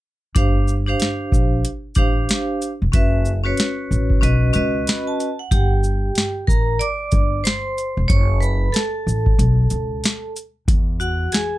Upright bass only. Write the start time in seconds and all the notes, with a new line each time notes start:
0.36 G1
1.32 A#1
1.96 A1
2.82 E1
2.94 F#1
3.91 A1
4.22 B1
4.55 C#2
5.51 G1
6.48 A1
7.13 G1
7.97 E1
8.10 F#1
9.07 A1
9.39 B1
9.71 C#2
10.68 E2